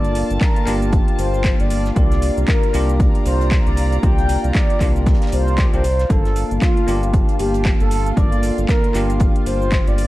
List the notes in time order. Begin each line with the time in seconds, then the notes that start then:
Already playing: G1 A#3 D4 F4 A4 D5 F5 G5 A5
0.05 closed hi-hat, shaker
0.15 closed hi-hat, open hi-hat, shaker
0.30 G1, closed hi-hat, shaker
0.41 A#4, kick, snare, clap, closed hi-hat, shaker
0.56 closed hi-hat
0.66 G1 A#3 D4 F4 G4, clap, closed hi-hat, open hi-hat, shaker
0.82 closed hi-hat, shaker
0.92 kick, closed hi-hat, shaker
1.08 closed hi-hat
1.19 G1 C5, closed hi-hat, open hi-hat, shaker
1.34 shaker
1.44 kick, snare, clap, closed hi-hat, shaker
1.60 G1 D5, closed hi-hat, shaker
1.70 closed hi-hat, open hi-hat, shaker
1.85 snare, closed hi-hat, shaker
1.95 C2 A#3 D4 F4 G4 D5 A#5, kick, closed hi-hat, shaker
2.06 D5
2.12 snare, closed hi-hat, shaker
2.22 closed hi-hat, open hi-hat, shaker
2.37 C2 A#5, closed hi-hat, shaker
2.47 A#4, kick, snare, clap, closed hi-hat, shaker
2.63 closed hi-hat
2.73 C2 A#3 D4 F4 G4, closed hi-hat, open hi-hat, shaker
2.89 closed hi-hat, shaker
3.00 kick, closed hi-hat, shaker
3.15 closed hi-hat
3.25 C2 C5, closed hi-hat, open hi-hat, shaker
3.41 closed hi-hat, shaker
3.51 kick, snare, clap, closed hi-hat, shaker
3.67 C2 D5, closed hi-hat, shaker
3.77 closed hi-hat, open hi-hat, shaker
3.92 closed hi-hat, shaker
4.02 C2 A#3 D4 F4 G4 G5, kick, closed hi-hat, shaker
4.18 closed hi-hat, shaker
4.29 closed hi-hat, open hi-hat, shaker
4.44 C2, closed hi-hat, shaker
4.55 D5, kick, snare, clap, closed hi-hat, shaker
4.70 closed hi-hat
4.80 C2 A#3 D4 F4 G4, kick, clap, closed hi-hat, open hi-hat, shaker
4.96 closed hi-hat, shaker
5.06 kick, snare, closed hi-hat, shaker
5.14 snare, closed hi-hat
5.22 snare, closed hi-hat
5.27 snare, closed hi-hat
5.32 C2 C5, closed hi-hat, open hi-hat, shaker
5.48 shaker
5.58 A#3 D4 F4 G4, kick, snare, clap, closed hi-hat, shaker
5.73 C2 A#3 D4 F4 G4 C5, closed hi-hat, shaker
5.84 closed hi-hat, open hi-hat, shaker
5.99 snare, closed hi-hat, shaker
6.09 G1 A#3 D4 F4 A4 F5 A5, kick, closed hi-hat, shaker
6.25 snare, closed hi-hat, shaker
6.33 A#3, open hi-hat, shaker
6.37 closed hi-hat
6.51 G1, closed hi-hat, shaker
6.62 F4, kick, snare, clap, closed hi-hat, shaker
6.77 closed hi-hat
6.87 G1 A#3 D4 F4 G4, closed hi-hat, open hi-hat, shaker
7.03 closed hi-hat, shaker
7.14 kick, closed hi-hat, shaker
7.29 closed hi-hat
7.39 G1 G4, closed hi-hat, open hi-hat, shaker
7.54 closed hi-hat, shaker
7.65 kick, snare, clap, closed hi-hat, shaker
7.80 G1 A4, closed hi-hat, shaker
7.91 closed hi-hat, open hi-hat, shaker
8.06 closed hi-hat, shaker
8.16 G1 A#3 D4 F4 A4 D5 G5, kick, closed hi-hat, shaker
8.32 closed hi-hat, shaker
8.43 closed hi-hat, open hi-hat, shaker
8.58 G1, closed hi-hat, shaker
8.68 A#4, kick, snare, clap, closed hi-hat, shaker
8.84 closed hi-hat
8.94 G1 A#3 D4 F4 G4, clap, closed hi-hat, open hi-hat, shaker
9.10 closed hi-hat, shaker
9.20 kick, closed hi-hat, shaker
9.36 closed hi-hat
9.46 G1 C5, closed hi-hat, open hi-hat, shaker
9.62 shaker
9.72 kick, snare, clap, closed hi-hat, shaker
9.87 G1 D5, closed hi-hat, shaker
9.98 closed hi-hat, open hi-hat, shaker